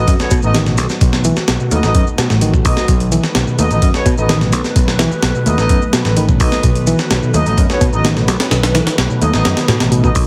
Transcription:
Already playing: D#3 F#3 A3 B3 F#4
0.07 F#2, kick, closed hi-hat, shaker
0.20 B3 C#4 F#4 A4 C#5, snare, shaker
0.31 B2, kick, closed hi-hat, shaker
0.43 A1 A2 B3 D#4 F#4 A4 D#5, shaker
0.54 D#3, snare, closed hi-hat, shaker
0.66 B2, snare, shaker
0.77 B1, snare, closed hi-hat, shaker
0.89 snare, shaker
1.01 B1 B2, kick, closed hi-hat, shaker
1.13 snare, shaker
1.24 E3, closed hi-hat, shaker
1.36 snare, shaker
1.48 B1, snare, closed hi-hat, shaker
1.60 B2, shaker
1.71 D#2 A3 B3 D#4 F#4 A4 D#5, closed hi-hat, shaker
1.83 A1 B3 D#4 F#4 A4 D#5, snare, shaker
1.95 F#2, kick, closed hi-hat, shaker
2.07 shaker
2.18 B2, snare, closed hi-hat, shaker
2.30 A1 A2, snare, shaker
2.41 D#3, closed hi-hat, shaker
2.54 B2, kick, shaker
2.65 B1 B3 D#4 F#4 A4 D#5, kick, open hi-hat, shaker
2.77 snare, shaker
2.88 B1 B2 B4, kick, closed hi-hat, shaker
3.00 closed hi-hat, shaker
3.12 E3, closed hi-hat, shaker
3.24 snare, shaker
3.35 B1, snare, closed hi-hat, shaker
3.47 B2, shaker
3.58 D#2 A3 B3 D#4 F#4 A4 D#5, closed hi-hat, shaker
3.71 A1 B3 D#4 F#4 A4 D#5, closed hi-hat, shaker
3.82 F#2, kick, closed hi-hat, shaker
3.94 B3 C#4 F#4 A4 C#5, snare, shaker
4.06 B2, kick, closed hi-hat, shaker
4.18 A1 A2 B3 D#4 F#4 A4 D#5, shaker
4.29 D#3, snare, closed hi-hat, shaker
4.41 B2, snare, shaker
4.52 B1, snare, closed hi-hat, shaker
4.64 snare, shaker
4.75 B1 B2, kick, closed hi-hat, shaker
4.88 snare, shaker
4.99 E3, snare, closed hi-hat, shaker
5.11 muted picked electric bass stroke, shaker
5.23 B1, snare, closed hi-hat, shaker
5.35 B2, shaker
5.46 D#2 A3 B3 D#4 F#4 A4 D#5, closed hi-hat, shaker
5.58 A1 B3 D#4 F#4 A4 D#5, snare, shaker
5.69 F#2, kick, closed hi-hat, shaker
5.82 shaker
5.93 B2, snare, closed hi-hat, shaker
6.05 A1 A2, snare, shaker
6.17 D#3, closed hi-hat, shaker
6.28 B2, kick, shaker
6.40 B1 B3 D#4 F#4 A4 D#5, kick, open hi-hat, shaker
6.52 snare, shaker
6.63 B1 B2, kick, closed hi-hat, shaker
6.75 closed hi-hat, shaker
6.87 E3, closed hi-hat, shaker
6.99 snare, shaker
7.10 B1, snare, closed hi-hat, shaker
7.22 B2, shaker
7.34 D#2 A3 B3 D#4 F#4 A4 D#5, closed hi-hat, shaker
7.46 A1 B3 D#4 F#4 A4 D#5, closed hi-hat, shaker
7.58 F#2, kick, closed hi-hat, shaker
7.69 B3 C#4 F#4 A4 C#5, snare, shaker
7.81 B2, kick, closed hi-hat, shaker
7.93 A1 A2 B3 D#4 F#4 A4 D#5, shaker
8.04 D#3, snare, closed hi-hat, shaker
8.16 B2, snare, shaker
8.28 B1, snare, closed hi-hat, shaker
8.40 snare, closed hi-hat, shaker
8.51 B1 B2, snare, closed hi-hat, shaker
8.63 snare, closed hi-hat, shaker
8.75 E3, snare, closed hi-hat, shaker
8.87 snare, closed hi-hat, shaker
8.98 B1, snare, closed hi-hat, shaker
9.10 B2, shaker
9.21 D#2 A3 B3 D#4 F#4 A4 D#5, closed hi-hat, shaker
9.33 A1 B3 D#4 F#4 A4 D#5, snare, shaker
9.45 F#2, snare, closed hi-hat, shaker
9.57 snare, closed hi-hat, shaker
9.68 A2 B2, snare, closed hi-hat, shaker
9.80 A1 B2, snare, closed hi-hat, shaker
9.92 B2, closed hi-hat, shaker
10.04 B2 B3 D#4 F#4 A4 D#5, kick, shaker
10.15 B1 F#3, kick, open hi-hat, shaker

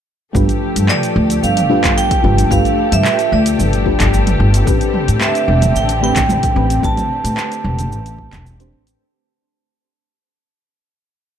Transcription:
0.33 G1 F3 A3 D4 F4 G4 A4 B4, kick, cabasa
0.49 closed hi-hat, cabasa
0.76 G2, closed hi-hat, cabasa
0.89 D5, clap, mid tom, cabasa
1.03 closed hi-hat, cabasa
1.16 D2
1.30 closed hi-hat, cabasa
1.43 G1 F5, cabasa
1.57 closed hi-hat, mid tom, cabasa
1.69 A3 D4 F4 G4 B4
1.84 G1, kick, clap, closed hi-hat, cabasa
1.98 G5, cabasa
2.11 kick, closed hi-hat, cabasa
2.23 G1 A3 D4 F4 G4 B4, mid tom
2.38 closed hi-hat, cabasa
2.49 G1 A3 D4 F4 G4 B4 F5, kick, cabasa
2.65 closed hi-hat, cabasa
2.92 G2 E5, closed hi-hat, mid tom, cabasa
3.05 clap, cabasa
3.19 closed hi-hat, cabasa
3.32 D2 D5
3.46 closed hi-hat, cabasa
3.59 G1, mid tom, cabasa
3.73 closed hi-hat, cabasa
3.85 A3 D4 F4 G4 B4, kick
4.00 G1, kick, clap, closed hi-hat, cabasa
4.14 cabasa
4.27 closed hi-hat, mid tom, cabasa
4.40 G1
4.54 closed hi-hat, cabasa
4.65 A1 D3 A3 C4 D4 G4 B4, kick, cabasa
4.81 closed hi-hat, cabasa
4.94 mid tom
5.08 A2, closed hi-hat, cabasa
5.21 E5, clap, muted conga, cabasa
5.35 closed hi-hat, cabasa
5.48 E1
5.61 closed hi-hat, mid tom, high conga, low conga, cabasa
5.75 A1 G5, cabasa
5.89 closed hi-hat, cabasa
6.01 A3 C4 D4 G4 B4 G5
6.16 A1, kick, clap, closed hi-hat, high conga, low conga, cabasa
6.29 mid tom, high conga, cabasa
6.43 kick, closed hi-hat, cabasa
6.55 A1 A3 C4 D4 G4 B4
6.70 closed hi-hat, cabasa
6.82 A1 A3 C4 D4 G4 B4 A5, kick, cabasa
6.97 closed hi-hat, mid tom, high conga, cabasa
7.24 A2, closed hi-hat, cabasa
7.37 clap, muted conga, cabasa
7.52 closed hi-hat, cabasa
7.64 E1, mid tom
7.79 closed hi-hat, high conga, low conga, cabasa
7.92 A1, cabasa
8.06 closed hi-hat, cabasa
8.18 kick
8.32 E1, kick, clap, closed hi-hat, mid tom, high conga, low conga, cabasa
8.46 high conga, cabasa
8.59 A3 C4 D4 G4 C5, closed hi-hat, cabasa
8.72 A1
8.87 closed hi-hat, cabasa

